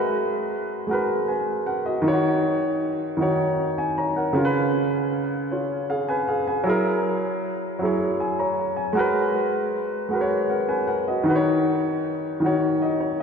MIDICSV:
0, 0, Header, 1, 2, 480
1, 0, Start_track
1, 0, Key_signature, 5, "minor"
1, 0, Tempo, 769231
1, 1267, Time_signature, 6, 3, 24, 8
1, 8254, End_track
2, 0, Start_track
2, 0, Title_t, "Grand piano"
2, 0, Program_c, 0, 0
2, 0, Control_c, 0, 64, 127
2, 0, Note_on_c, 0, 56, 77
2, 0, Note_on_c, 0, 66, 67
2, 0, Note_on_c, 0, 70, 65
2, 0, Note_on_c, 0, 71, 83
2, 341, Note_off_c, 0, 56, 0
2, 349, Note_off_c, 0, 66, 0
2, 353, Note_off_c, 0, 70, 0
2, 360, Note_off_c, 0, 71, 0
2, 543, Note_on_c, 0, 56, 60
2, 556, Note_on_c, 0, 66, 55
2, 567, Note_on_c, 0, 70, 59
2, 579, Note_on_c, 0, 71, 69
2, 791, Note_off_c, 0, 66, 0
2, 794, Note_off_c, 0, 71, 0
2, 797, Note_off_c, 0, 70, 0
2, 800, Note_on_c, 0, 80, 49
2, 804, Note_on_c, 0, 71, 46
2, 1022, Note_off_c, 0, 80, 0
2, 1024, Note_off_c, 0, 71, 0
2, 1039, Note_on_c, 0, 78, 55
2, 1041, Note_on_c, 0, 70, 44
2, 1065, Note_off_c, 0, 56, 0
2, 1147, Note_off_c, 0, 78, 0
2, 1148, Note_off_c, 0, 70, 0
2, 1159, Note_on_c, 0, 75, 54
2, 1162, Note_on_c, 0, 66, 44
2, 1259, Note_on_c, 0, 51, 73
2, 1273, Note_on_c, 0, 63, 68
2, 1274, Control_c, 0, 64, 0
2, 1285, Note_on_c, 0, 65, 53
2, 1297, Note_on_c, 0, 73, 85
2, 1314, Note_off_c, 0, 66, 0
2, 1317, Note_off_c, 0, 65, 0
2, 1323, Note_on_c, 0, 66, 69
2, 1381, Note_off_c, 0, 75, 0
2, 1388, Control_c, 0, 64, 127
2, 1784, Note_off_c, 0, 51, 0
2, 1790, Note_off_c, 0, 63, 0
2, 1802, Note_off_c, 0, 73, 0
2, 1816, Note_off_c, 0, 66, 0
2, 1977, Note_on_c, 0, 51, 62
2, 1986, Note_on_c, 0, 63, 58
2, 2000, Note_on_c, 0, 66, 54
2, 2009, Note_on_c, 0, 73, 68
2, 2238, Note_off_c, 0, 73, 0
2, 2360, Note_on_c, 0, 80, 55
2, 2468, Note_off_c, 0, 80, 0
2, 2482, Note_on_c, 0, 82, 55
2, 2486, Note_on_c, 0, 73, 47
2, 2503, Note_off_c, 0, 51, 0
2, 2507, Note_off_c, 0, 63, 0
2, 2514, Note_off_c, 0, 66, 0
2, 2589, Note_off_c, 0, 82, 0
2, 2591, Note_off_c, 0, 73, 0
2, 2598, Note_on_c, 0, 78, 56
2, 2602, Note_on_c, 0, 70, 46
2, 2701, Note_on_c, 0, 49, 78
2, 2712, Note_on_c, 0, 61, 70
2, 2714, Control_c, 0, 64, 0
2, 2724, Note_on_c, 0, 65, 66
2, 2726, Note_off_c, 0, 70, 0
2, 2735, Note_on_c, 0, 70, 67
2, 2762, Note_off_c, 0, 70, 0
2, 2776, Note_on_c, 0, 71, 86
2, 2810, Control_c, 0, 64, 127
2, 2821, Note_off_c, 0, 78, 0
2, 3224, Note_off_c, 0, 49, 0
2, 3230, Note_off_c, 0, 61, 0
2, 3236, Note_off_c, 0, 65, 0
2, 3262, Note_off_c, 0, 71, 0
2, 3442, Note_on_c, 0, 73, 49
2, 3445, Note_on_c, 0, 65, 43
2, 3663, Note_off_c, 0, 73, 0
2, 3664, Note_off_c, 0, 65, 0
2, 3680, Note_on_c, 0, 77, 60
2, 3684, Note_on_c, 0, 68, 47
2, 3788, Note_off_c, 0, 77, 0
2, 3790, Note_off_c, 0, 68, 0
2, 3797, Note_on_c, 0, 80, 58
2, 3802, Note_on_c, 0, 71, 52
2, 3906, Note_off_c, 0, 80, 0
2, 3909, Note_off_c, 0, 71, 0
2, 3919, Note_on_c, 0, 77, 54
2, 3923, Note_on_c, 0, 68, 47
2, 4027, Note_off_c, 0, 77, 0
2, 4030, Note_off_c, 0, 68, 0
2, 4040, Note_on_c, 0, 80, 49
2, 4043, Note_on_c, 0, 71, 46
2, 4141, Note_on_c, 0, 54, 78
2, 4156, Control_c, 0, 64, 0
2, 4156, Note_on_c, 0, 64, 70
2, 4166, Note_on_c, 0, 68, 75
2, 4178, Note_on_c, 0, 70, 87
2, 4262, Note_off_c, 0, 80, 0
2, 4264, Note_off_c, 0, 71, 0
2, 4269, Control_c, 0, 64, 127
2, 4664, Note_off_c, 0, 54, 0
2, 4672, Note_off_c, 0, 64, 0
2, 4677, Note_off_c, 0, 68, 0
2, 4683, Note_off_c, 0, 70, 0
2, 4861, Note_on_c, 0, 54, 65
2, 4875, Note_on_c, 0, 64, 57
2, 4883, Note_on_c, 0, 68, 56
2, 4898, Note_on_c, 0, 73, 67
2, 5119, Note_on_c, 0, 80, 52
2, 5123, Note_off_c, 0, 73, 0
2, 5227, Note_off_c, 0, 80, 0
2, 5237, Note_on_c, 0, 82, 55
2, 5240, Note_on_c, 0, 73, 51
2, 5385, Note_off_c, 0, 54, 0
2, 5391, Note_off_c, 0, 64, 0
2, 5396, Note_off_c, 0, 68, 0
2, 5460, Note_off_c, 0, 82, 0
2, 5462, Note_off_c, 0, 73, 0
2, 5469, Note_on_c, 0, 80, 52
2, 5572, Note_on_c, 0, 56, 72
2, 5585, Note_on_c, 0, 66, 71
2, 5595, Control_c, 0, 64, 0
2, 5597, Note_on_c, 0, 70, 72
2, 5610, Note_on_c, 0, 71, 83
2, 5696, Note_off_c, 0, 80, 0
2, 5703, Control_c, 0, 64, 127
2, 6100, Note_off_c, 0, 56, 0
2, 6106, Note_off_c, 0, 66, 0
2, 6113, Note_off_c, 0, 70, 0
2, 6119, Note_off_c, 0, 71, 0
2, 6294, Note_on_c, 0, 56, 64
2, 6307, Note_on_c, 0, 66, 59
2, 6320, Note_on_c, 0, 70, 56
2, 6331, Note_on_c, 0, 71, 54
2, 6359, Note_off_c, 0, 71, 0
2, 6371, Note_on_c, 0, 73, 66
2, 6544, Note_off_c, 0, 70, 0
2, 6547, Note_off_c, 0, 66, 0
2, 6550, Note_on_c, 0, 78, 52
2, 6553, Note_on_c, 0, 70, 45
2, 6579, Note_off_c, 0, 73, 0
2, 6663, Note_off_c, 0, 78, 0
2, 6664, Note_off_c, 0, 70, 0
2, 6668, Note_on_c, 0, 80, 57
2, 6670, Note_on_c, 0, 71, 53
2, 6782, Note_off_c, 0, 80, 0
2, 6783, Note_off_c, 0, 71, 0
2, 6785, Note_on_c, 0, 78, 55
2, 6790, Note_on_c, 0, 70, 49
2, 6821, Note_off_c, 0, 56, 0
2, 6900, Note_off_c, 0, 78, 0
2, 6902, Note_off_c, 0, 70, 0
2, 6912, Note_on_c, 0, 75, 53
2, 6915, Note_on_c, 0, 66, 44
2, 7011, Note_on_c, 0, 51, 73
2, 7023, Note_on_c, 0, 63, 73
2, 7024, Note_off_c, 0, 66, 0
2, 7033, Note_on_c, 0, 66, 70
2, 7036, Control_c, 0, 64, 0
2, 7048, Note_on_c, 0, 71, 71
2, 7078, Note_off_c, 0, 71, 0
2, 7086, Note_on_c, 0, 73, 81
2, 7138, Note_off_c, 0, 75, 0
2, 7138, Control_c, 0, 64, 127
2, 7540, Note_off_c, 0, 51, 0
2, 7546, Note_off_c, 0, 63, 0
2, 7551, Note_off_c, 0, 66, 0
2, 7577, Note_off_c, 0, 73, 0
2, 7738, Note_on_c, 0, 51, 63
2, 7749, Note_on_c, 0, 63, 59
2, 7762, Note_on_c, 0, 66, 58
2, 7775, Note_on_c, 0, 73, 71
2, 7993, Note_off_c, 0, 66, 0
2, 7999, Note_on_c, 0, 75, 55
2, 8001, Note_off_c, 0, 73, 0
2, 8003, Note_on_c, 0, 66, 46
2, 8108, Note_off_c, 0, 75, 0
2, 8109, Note_off_c, 0, 66, 0
2, 8114, Note_on_c, 0, 73, 59
2, 8225, Note_off_c, 0, 73, 0
2, 8254, Note_off_c, 0, 51, 0
2, 8254, Note_off_c, 0, 63, 0
2, 8254, End_track
0, 0, End_of_file